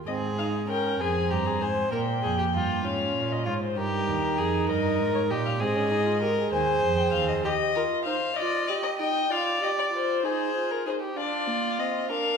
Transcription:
0.07 0.96 G#2 medium
0.07 0.36 C4 medium
0.07 0.65 G#4 medium
0.07 0.15 D#5 medium
0.38 0.68 D#4 medium
0.38 0.46 F5 medium
0.69 1.01 C#4 medium
0.69 1.02 A#4 medium
0.69 0.99 G5 medium
0.99 1.32 F2 medium
0.99 1.93 C4 medium
0.99 1.32 G#4 medium
0.99 1.30 G#5 medium
1.30 1.63 G2 medium
1.30 1.47 G4 medium
1.30 1.63 A#5 medium
1.46 1.63 G#4 medium
1.61 1.92 G#2 medium
1.61 1.91 C5 medium
1.61 1.92 G#5 medium
1.91 2.25 A#2 medium
1.91 2.84 A#3 medium
1.91 2.00 A#4 medium
1.91 2.83 G5 medium
2.23 2.55 F2 medium
2.23 2.38 G#4 medium
2.38 2.45 G4 medium
2.54 2.86 G2 medium
2.54 2.86 F4 medium
2.83 3.15 G#2 medium
2.83 3.45 C#4 medium
2.83 3.78 F4 medium
2.83 3.33 F5 medium
3.15 3.47 A#2 medium
3.32 3.48 D#5 medium
3.46 3.78 G#2 medium
3.46 3.54 F4 medium
3.46 3.61 C#5 medium
3.62 3.79 C5 medium
3.76 4.09 G2 medium
3.76 5.60 D#4 medium
3.76 4.40 G4 medium
3.76 4.70 A#4 medium
4.08 4.40 D#2 medium
4.38 4.69 F2 medium
4.38 4.69 G#4 medium
4.69 5.02 G2 medium
4.69 5.32 A#4 medium
4.69 5.14 D#5 medium
5.00 5.32 G#2 medium
5.15 5.21 C#5 medium
5.30 5.63 A#2 medium
5.30 5.62 G4 medium
5.30 5.44 D#5 medium
5.45 5.51 F5 medium
5.59 6.52 G#2 medium
5.59 5.77 C4 medium
5.59 6.21 G#4 medium
5.59 6.50 D#5 medium
5.76 5.93 C#4 medium
5.91 6.07 D#4 medium
6.06 6.21 F4 medium
6.21 6.28 G4 medium
6.21 6.52 A#4 medium
6.37 7.45 G#4 medium
6.52 6.83 D#2 medium
6.52 7.43 C5 medium
6.52 6.97 G#5 medium
6.83 7.13 F2 medium
6.97 7.12 G5 medium
7.13 7.44 D#2 medium
7.13 7.28 F5 medium
7.28 7.34 D#5 medium
7.43 7.77 G4 medium
7.43 7.53 G4 medium
7.43 8.04 D#5 loud
7.75 8.06 F4 medium
7.75 7.83 A#4 medium
8.05 8.14 D#4 medium
8.05 8.36 C5 medium
8.05 8.37 F5 medium
8.36 8.70 F4 medium
8.36 8.69 D5 medium
8.36 8.67 D#5 medium
8.67 9.01 G4 medium
8.67 8.74 D5 medium
8.67 8.98 D#5 medium
8.83 8.89 D#5 medium
8.99 9.30 D#4 medium
8.99 9.31 D#5 medium
8.99 9.33 G5 medium
9.30 9.61 F4 medium
9.30 10.22 D5 medium
9.30 9.62 F5 medium
9.62 9.92 G4 medium
9.62 9.69 D#5 medium
9.79 9.85 D5 medium
9.92 10.25 F4 medium
9.92 10.26 C5 medium
10.23 10.55 D#4 medium
10.23 10.86 G#4 medium
10.23 10.73 C5 medium
10.55 10.88 F4 medium
10.71 10.86 A#4 medium
10.86 11.17 D#4 medium
10.86 10.92 G#4 medium
10.86 10.95 C5 medium
11.01 11.18 G4 medium
11.16 11.49 D4 medium
11.16 12.11 F4 medium
11.16 11.81 D5 loud
11.47 11.80 A#3 medium
11.79 12.12 C4 medium
11.79 12.10 D#5 medium
12.10 12.37 D4 medium
12.10 12.37 A#4 medium
12.10 12.37 F5 medium

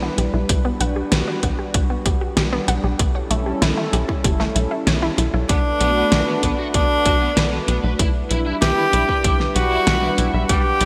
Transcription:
0.00 5.45 G3 medium
0.00 0.09 B3 medium
0.00 2.95 D4 medium
0.00 0.47 E4 medium
0.00 2.95 B4 medium
0.18 0.30 B1 medium
0.18 0.30 G4 medium
0.18 closed hi-hat medium
0.33 0.45 B1 medium
0.33 0.41 E4 medium
0.49 0.72 B1 loud
0.49 2.97 F#4 medium
0.49 0.61 G4 medium
0.49 kick loud
0.49 closed hi-hat medium
0.65 0.72 B3 loud
0.80 1.04 B1 loud
0.80 0.92 F#5 medium
0.80 closed hi-hat medium
0.96 1.11 G4 medium
1.12 1.23 B1 medium
1.12 1.23 B3 medium
1.12 snare loud
1.12 closed hi-hat medium
1.27 1.39 D5 medium
1.43 1.55 B1 loud
1.43 1.50 B3 loud
1.43 kick medium
1.43 closed hi-hat medium
1.59 1.70 G4 medium
1.74 1.97 B1 medium
1.74 1.89 F#4 medium
1.74 kick loud
1.74 closed hi-hat loud
1.90 1.97 B3 medium
2.06 2.29 B1 medium
2.06 2.17 G4 medium
2.06 kick loud
2.06 closed hi-hat medium
2.21 2.28 F#4 medium
2.37 2.60 B1 medium
2.37 2.48 G4 medium
2.37 snare loud
2.37 closed hi-hat medium
2.53 2.59 B3 loud
2.68 2.80 B1 medium
2.68 2.80 F#5 loud
2.68 closed hi-hat medium
2.84 2.95 B1 medium
2.84 2.99 G4 medium
2.99 3.22 B1 loud
2.99 3.11 A3 medium
2.99 5.47 C#4 medium
2.99 5.47 E4 medium
2.99 5.47 A4 medium
2.99 kick loud
2.99 closed hi-hat medium
3.15 3.26 C#5 medium
3.30 3.54 B1 medium
3.30 3.37 A3 medium
3.30 closed hi-hat medium
3.46 3.58 G4 medium
3.62 3.73 B1 medium
3.62 3.77 E4 medium
3.62 snare loud
3.62 closed hi-hat medium
3.77 3.84 A3 medium
3.93 4.05 B1 loud
3.93 4.04 G4 medium
3.93 closed hi-hat medium
4.09 4.16 E4 medium
4.09 kick medium
4.24 4.47 F#1 medium
4.24 4.36 G4 medium
4.24 kick loud
4.24 closed hi-hat medium
4.40 4.47 A3 loud
4.40 snare soft
4.56 4.67 B1 medium
4.56 4.67 A3 medium
4.56 closed hi-hat medium
4.71 4.83 E4 medium
4.87 5.10 B1 loud
4.87 5.02 C#5 medium
4.87 snare loud
4.87 closed hi-hat medium
5.02 5.14 E4 loud
5.18 5.30 B1 loud
5.18 5.32 E4 medium
5.18 closed hi-hat medium
5.34 5.45 B1 loud
5.34 5.45 E4 medium
5.49 5.72 B1 medium
5.49 7.97 A3 medium
5.49 5.57 B3 medium
5.49 6.62 D4 loud
5.49 7.97 D4 medium
5.49 7.97 F#4 medium
5.49 7.97 B4 medium
5.49 kick loud
5.49 closed hi-hat medium
5.80 6.04 B1 medium
5.80 5.88 B3 medium
5.80 closed hi-hat medium
5.96 6.04 B3 medium
6.12 6.23 B1 medium
6.12 6.20 F#4 medium
6.12 snare loud
6.12 closed hi-hat medium
6.27 6.32 B3 medium
6.43 6.55 B1 loud
6.43 6.51 B3 medium
6.43 kick medium
6.43 closed hi-hat medium
6.59 6.66 F#4 medium
6.74 6.97 B1 medium
6.74 6.82 B3 medium
6.74 7.56 D4 loud
6.74 kick loud
6.74 closed hi-hat medium
7.05 7.29 B1 medium
7.05 7.13 F#4 medium
7.05 kick loud
7.05 closed hi-hat medium
7.21 7.29 B3 medium
7.37 7.60 B1 medium
7.37 7.41 B4 loud
7.37 snare loud
7.37 closed hi-hat medium
7.52 7.57 B3 medium
7.68 7.80 B1 medium
7.68 7.76 B3 loud
7.68 closed hi-hat medium
7.84 7.95 B1 medium
7.84 7.91 B4 medium
7.99 8.22 B1 loud
7.99 10.85 G3 medium
7.99 10.85 D4 medium
7.99 8.07 E4 medium
7.99 10.47 E4 medium
7.99 10.85 B4 medium
7.99 kick loud
7.99 closed hi-hat medium
8.31 8.54 B1 medium
8.31 8.38 E4 medium
8.31 closed hi-hat medium
8.46 8.54 E4 medium
8.62 8.73 B1 medium
8.62 9.43 G4 loud
8.62 8.70 B4 medium
8.62 snare loud
8.62 closed hi-hat medium
8.77 8.82 E4 medium
8.93 9.05 B1 loud
8.93 9.01 E4 loud
8.93 closed hi-hat medium
9.09 9.17 B4 medium
9.09 kick medium
9.24 9.47 B1 medium
9.24 9.32 E4 medium
9.24 kick loud
9.24 closed hi-hat medium
9.40 snare soft
9.55 9.79 B1 medium
9.55 10.37 F#4 loud
9.55 9.63 B4 medium
9.55 closed hi-hat medium
9.71 9.79 E4 medium
9.87 10.10 B1 medium
9.87 9.92 E5 loud
9.87 snare loud
9.87 closed hi-hat medium
10.03 10.07 E4 medium
10.18 10.30 B1 medium
10.18 10.26 E4 medium
10.18 closed hi-hat medium
10.34 10.45 B1 medium
10.34 10.42 E5 medium
10.49 10.72 B1 loud
10.49 10.57 G3 medium
10.49 10.85 G4 loud
10.49 10.85 F#5 medium
10.49 kick loud
10.49 closed hi-hat medium
10.81 10.85 B1 medium
10.81 10.85 G3 medium
10.81 closed hi-hat medium

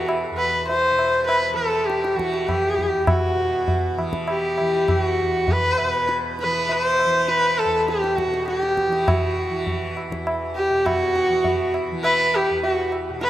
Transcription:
0.00 0.31 E2 medium
0.00 0.91 B2 medium
0.00 1.54 E3 medium
0.09 tabla na medium
0.31 2.75 E2 medium
0.37 0.66 B4 medium
0.37 tabla na medium
0.68 1.24 C5 medium
0.68 tabla tin medium
0.91 3.35 B2 medium
0.99 tabla na medium
1.26 1.55 B4 medium
1.26 tabla na medium
1.54 2.15 E3 medium
1.54 1.87 A4 medium
1.86 2.18 G4 medium
1.86 tabla te medium
2.04 tabla te medium
2.15 3.97 E3 medium
2.15 2.49 F#4 medium
2.19 tabla ke medium
2.33 tabla te soft
2.48 3.08 G4 medium
2.48 tabla na medium
2.48 tabla ge medium
2.75 5.20 E2 medium
2.75 tabla ge soft
3.07 3.95 F#4 medium
3.07 tabla na loud
3.07 tabla ge medium
3.36 5.81 B2 medium
3.68 tabla tin medium
3.68 tabla ge medium
3.97 4.59 E3 medium
3.97 tabla na medium
4.13 tabla ke medium
4.28 4.93 G4 medium
4.28 tabla na medium
4.58 6.44 E3 medium
4.58 tabla na medium
4.88 5.53 F#4 medium
4.88 tabla na medium
4.88 tabla ge medium
5.21 7.64 E2 medium
5.48 6.10 B4 medium
5.48 tabla tin medium
5.48 tabla ge medium
5.78 8.26 B2 medium
5.78 tabla na soft
6.09 tabla te medium
6.39 6.73 B4 medium
6.39 tabla te medium
6.44 7.04 E3 medium
6.69 7.30 C5 loud
6.69 tabla tin medium
6.99 tabla na medium
7.04 8.87 E3 medium
7.28 7.60 B4 medium
7.28 tabla te medium
7.58 7.88 A4 medium
7.58 tabla te soft
7.65 10.08 E2 medium
7.88 8.20 G4 medium
7.88 tabla te medium
8.04 tabla te medium
8.18 8.47 F#4 medium
8.18 tabla ke medium
8.27 10.70 B2 medium
8.34 tabla te medium
8.48 9.09 G4 medium
8.48 tabla te medium
8.63 tabla te medium
8.77 tabla ke medium
8.87 9.49 E3 medium
8.93 tabla te medium
9.07 9.96 F#4 medium
9.07 tabla na medium
9.07 tabla ge medium
9.49 11.29 E3 medium
9.67 tabla tin medium
9.67 tabla ge medium
9.97 tabla na medium
10.09 12.49 E2 medium
10.09 tabla ke medium
10.27 tabla na medium
10.56 10.87 G4 medium
10.70 13.09 B2 medium
10.86 11.74 F#4 medium
10.86 tabla na medium
10.86 tabla ge medium
11.16 tabla te medium
11.29 11.91 E3 medium
11.44 tabla tin medium
11.44 tabla ge medium
11.74 tabla na medium
11.91 13.30 E3 medium
12.04 12.37 B4 medium
12.04 tabla na medium
12.35 12.62 G4 medium
12.35 tabla na medium
12.50 13.30 E2 soft
12.63 12.90 F#4 medium
12.63 tabla tin medium
12.92 tabla na medium
13.10 13.30 B2 medium
13.21 13.30 B4 medium
13.21 tabla te medium

